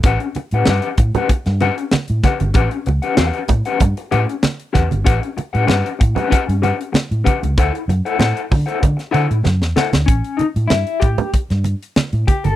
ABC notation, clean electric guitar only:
X:1
M:4/4
L:1/16
Q:1/4=96
K:Amix
V:1 name="Clean electric guitar"
[CGBf] z2 [CGBf] [CGBf] z2 [CGBf] z2 [CGBf] z3 [CGBf] z | [CGBf] z2 [CGBf] [CGBf] z2 [CGBf] z2 [CGBf] z3 [CGBf] z | [CGBf] z2 [CGBf] [CGBf] z2 [CGBf] [CGBf] z [CGBf] z3 [CGBf] z | [EA=cf] z2 [EAcf] [EAcf] z2 [EAcf] z2 [EAcf] z3 [EAcf] z |
C2 ^D2 E2 G2 z6 G A |]